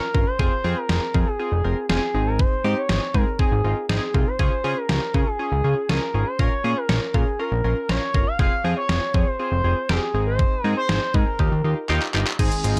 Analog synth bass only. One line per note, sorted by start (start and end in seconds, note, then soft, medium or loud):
0.14 0.25 G1 medium
0.39 0.50 F1 loud
0.64 0.75 F2 loud
0.89 1.00 F1 medium
1.14 1.25 F2 medium
1.52 1.62 F1 loud
1.64 1.75 F1 medium
1.89 2.00 F1 medium
2.14 2.45 G#1 loud
2.64 2.75 G#2 loud
2.89 3.00 G#1 loud
3.14 3.25 G#2 medium
3.52 3.62 G#1 loud
3.64 3.75 G#1 loud
3.89 4.00 G#1 loud
4.15 4.25 C2 medium
4.39 4.50 C#2 loud
4.64 4.74 C#3 loud
4.89 5.00 C#2 medium
5.14 5.25 C#3 medium
5.52 5.62 C#2 loud
5.64 5.75 C#2 medium
5.89 6.00 C#2 loud
6.14 6.24 G#1 medium
6.39 6.50 A#1 loud
6.64 6.75 A#2 loud
6.89 7.00 A#1 loud
7.14 7.25 A#2 medium
7.52 7.62 A#1 loud
7.64 7.75 A#1 medium
7.89 7.99 A#1 loud
8.14 8.25 G1 medium
8.39 8.50 F1 loud
8.64 8.75 F2 loud
8.89 9.00 F1 loud
9.14 9.25 F2 medium
9.52 9.62 F1 loud
9.64 9.74 F1 medium
9.89 9.99 F1 loud
10.14 10.45 G#1 loud
10.64 10.75 G#2 loud
10.89 11.00 G#1 loud
11.14 11.25 G#2 medium
11.39 11.49 D#2 loud
11.52 11.62 D#2 medium
11.64 11.75 D#2 medium
11.89 12.00 D#2 loud
12.14 12.25 G1 medium
12.39 12.49 G#1 loud
12.64 12.75 G#1 loud
12.77 12.80 G#1 loud